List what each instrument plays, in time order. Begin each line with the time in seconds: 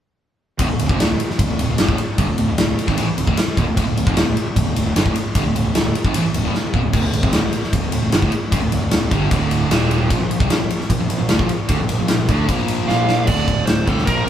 0.59 fingered electric bass D1, distorted electric guitar D2 A2, kick, ride
0.69 fingered electric bass D1, distorted electric guitar D2 A2
0.79 fingered electric bass D1, distorted electric guitar D2 A2, ride
0.89 fingered electric bass F1, distorted electric guitar F2 C3, kick
1.00 fingered electric bass D1, distorted electric guitar D2 A2, snare, ride
1.10 fingered electric bass D1, distorted electric guitar D2 A2
1.19 muted overdriven electric guitar stroke, muted fingered electric bass stroke, muted distorted electric guitar stroke, ride
1.29 muted overdriven electric guitar stroke, muted fingered electric bass stroke, muted distorted electric guitar stroke, snare
1.39 fingered electric bass D1, distorted electric guitar D2 A2, kick, ride
1.49 fingered electric bass D1, distorted electric guitar D2 A2
1.59 fingered electric bass D1, distorted electric guitar D2 A2, ride
1.69 fingered electric bass D1, distorted electric guitar D2 A2
1.78 fingered electric bass G1, distorted electric guitar G2 D3, snare, ride
1.88 fingered electric bass D1, distorted electric guitar D2 A2, kick
1.98 muted overdriven electric guitar stroke, muted distorted electric guitar stroke, muted fingered electric bass stroke, ride
2.18 fingered electric bass G1, distorted electric guitar G2 D3, kick, ride
2.29 fingered electric bass D1, distorted electric guitar D2 A2
2.38 fingered electric bass D1, distorted electric guitar D2 A2, ride
2.48 fingered electric bass D1, distorted electric guitar D2 A2
2.57 fingered electric bass D1, distorted electric guitar D2 A2, snare, ride
2.67 fingered electric bass D1, distorted electric guitar D2 A2
2.77 muted distorted electric guitar stroke, muted overdriven electric guitar stroke, muted fingered electric bass stroke, ride
2.87 fingered electric bass G#1, distorted electric guitar G#2 D#3, kick, snare
2.96 fingered electric bass A1, distorted electric guitar A2 E3, ride
3.06 muted distorted electric guitar stroke, muted fingered electric bass stroke, muted overdriven electric guitar stroke
3.15 fingered electric bass D1, distorted electric guitar D2 A2, ride
3.26 fingered electric bass D1, distorted electric guitar D2 A2, kick
3.36 muted distorted electric guitar stroke, muted fingered electric bass stroke, muted overdriven electric guitar stroke, snare, ride
3.47 muted distorted electric guitar stroke, muted overdriven electric guitar stroke, muted fingered electric bass stroke
3.57 fingered electric bass D#1, distorted electric guitar D#2 A#2, kick, ride
3.67 fingered electric bass D1, distorted electric guitar D2 A2
3.76 fingered electric bass D1, distorted electric guitar D2 A2, kick, ride
3.87 fingered electric bass D1, distorted electric guitar D2 A2
3.96 fingered electric bass D1, distorted electric guitar D2 A2, ride
4.06 fingered electric bass F1, distorted electric guitar F2 C3, kick
4.16 fingered electric bass D1, distorted electric guitar D2 A2, snare, ride
4.26 fingered electric bass D1, distorted electric guitar D2 A2
4.36 muted overdriven electric guitar stroke, muted distorted electric guitar stroke, muted fingered electric bass stroke, ride
4.46 muted overdriven electric guitar stroke, muted fingered electric bass stroke, muted distorted electric guitar stroke
4.56 fingered electric bass D1, distorted electric guitar D2 A2, kick, ride
4.66 fingered electric bass D1, distorted electric guitar D2 A2
4.76 fingered electric bass D1, distorted electric guitar D2 A2, ride
4.85 fingered electric bass D1, distorted electric guitar D2 A2
4.96 fingered electric bass G1, distorted electric guitar G2 D3, snare, ride
5.05 fingered electric bass D1, distorted electric guitar D2 A2, kick
5.16 muted fingered electric bass stroke, muted distorted electric guitar stroke, muted overdriven electric guitar stroke, ride
5.35 fingered electric bass G1, distorted electric guitar G2 D3, kick, ride
5.45 fingered electric bass D1, distorted electric guitar D2 A2
5.55 fingered electric bass D1, distorted electric guitar D2 A2, ride
5.65 fingered electric bass D1, distorted electric guitar D2 A2
5.74 fingered electric bass D1, distorted electric guitar D2 A2, snare, ride
5.84 fingered electric bass D1, distorted electric guitar D2 A2
5.94 muted fingered electric bass stroke, muted distorted electric guitar stroke, muted overdriven electric guitar stroke, ride
6.04 fingered electric bass G#1, distorted electric guitar G#2 D#3, kick
6.14 fingered electric bass A1, distorted electric guitar A2 E3, ride
6.24 muted distorted electric guitar stroke, muted fingered electric bass stroke, muted overdriven electric guitar stroke
6.33 fingered electric bass D1, distorted electric guitar D2 A2, ride
6.43 fingered electric bass D1, distorted electric guitar D2 A2
6.54 muted distorted electric guitar stroke, muted fingered electric bass stroke, muted overdriven electric guitar stroke, snare
6.63 muted distorted electric guitar stroke, muted fingered electric bass stroke, muted overdriven electric guitar stroke
6.73 fingered electric bass D#1, distorted electric guitar D#2 A#2, kick
6.83 fingered electric bass D1, distorted electric guitar D2 A2
6.92 fingered electric bass D1, distorted electric guitar D2 A2, kick, crash
7.03 fingered electric bass D1, distorted electric guitar D2 A2
7.13 fingered electric bass D1, distorted electric guitar D2 A2, ride
7.22 fingered electric bass F1, distorted electric guitar F2 C3, kick
7.33 fingered electric bass D1, distorted electric guitar D2 A2, snare, ride
7.43 fingered electric bass D1, distorted electric guitar D2 A2
7.53 muted distorted electric guitar stroke, muted overdriven electric guitar stroke, muted fingered electric bass stroke, ride
7.62 muted distorted electric guitar stroke, muted overdriven electric guitar stroke, muted fingered electric bass stroke, snare
7.72 fingered electric bass D1, distorted electric guitar D2 A2, kick, ride
7.82 fingered electric bass D1, distorted electric guitar D2 A2
7.92 fingered electric bass D1, distorted electric guitar D2 A2, ride
8.02 fingered electric bass D1, distorted electric guitar D2 A2
8.12 fingered electric bass G1, distorted electric guitar G2 D3, snare, ride
8.21 fingered electric bass D1, distorted electric guitar D2 A2, kick
8.32 muted overdriven electric guitar stroke, muted distorted electric guitar stroke, muted fingered electric bass stroke, ride
8.51 fingered electric bass G1, distorted electric guitar G2 D3, kick, ride
8.61 fingered electric bass D1, distorted electric guitar D2 A2
8.72 fingered electric bass D1, distorted electric guitar D2 A2, ride
8.81 fingered electric bass D1, distorted electric guitar D2 A2
8.91 fingered electric bass D1, distorted electric guitar D2 A2, snare, ride
9.00 fingered electric bass D1, distorted electric guitar D2 A2
9.11 fingered electric bass G1, distorted electric guitar G2 D3 G3, kick, ride
9.30 fingered electric bass D1, distorted electric guitar D2 A2 D3, kick, ride
9.51 ride
9.70 fingered electric bass D#1, distorted electric guitar D#2 A#2 D#3, snare, ride
9.91 ride
10.10 fingered electric bass A#1, distorted electric guitar A#2 F3, kick, ride
10.20 fingered electric bass A#1, distorted electric guitar A#2 F3
10.29 fingered electric bass A#1, distorted electric guitar A#2 F3, ride
10.40 fingered electric bass C2, distorted electric guitar C3 G3, kick
10.49 fingered electric bass A#1, distorted electric guitar A#2 F3, snare, ride
10.59 fingered electric bass A#1, distorted electric guitar A#2 F3
10.69 muted distorted electric guitar stroke, muted overdriven electric guitar stroke, muted fingered electric bass stroke, ride
10.80 muted overdriven electric guitar stroke, muted distorted electric guitar stroke, muted fingered electric bass stroke, snare
10.90 fingered electric bass A#1, distorted electric guitar A#2 F3, kick, ride
11.00 fingered electric bass A#1, distorted electric guitar A#2 F3
11.10 fingered electric bass A#1, distorted electric guitar A#2 F3, ride
11.20 fingered electric bass A#1, distorted electric guitar A#2 F3
11.29 fingered electric bass D2, distorted electric guitar D3 A3, snare, ride
11.39 fingered electric bass A#1, distorted electric guitar A#2 F3, kick
11.49 muted overdriven electric guitar stroke, muted distorted electric guitar stroke, muted fingered electric bass stroke, ride
11.68 fingered electric bass D2, distorted electric guitar D3 A3, kick, ride
11.80 fingered electric bass A#1, distorted electric guitar A#2 F3
11.89 fingered electric bass A#1, distorted electric guitar A#2 F3, ride
11.99 fingered electric bass A#1, distorted electric guitar A#2 F3
12.08 fingered electric bass A#1, distorted electric guitar A#2 F3, snare, ride
12.20 fingered electric bass A#1, distorted electric guitar A#2 F3
12.28 fingered electric bass D2, distorted electric guitar D3 A3 D4, kick, ride
12.49 fingered electric bass A#1, distorted electric guitar A#2 F3 A#3, kick, ride
12.68 ride
12.88 fingered electric bass A#1, distorted electric guitar A#2 F3 A#3, lead electric guitar F5, snare
13.09 snare
13.27 fingered electric bass D1, distorted electric guitar D2 A2 D3, lead electric guitar D5, kick, crash
13.48 fingered electric bass D1, distorted electric guitar D2 A2, kick, ride
13.66 fingered electric bass D1, distorted electric guitar D2 A2, lead electric guitar C5, snare, ride
13.87 fingered electric bass C2, distorted electric guitar D2 A2 D3, lead electric guitar A4, kick, ride
13.98 snare
14.05 fingered electric bass A#1, distorted electric guitar A#2 F3 A#3, lead electric guitar A#4, kick, ride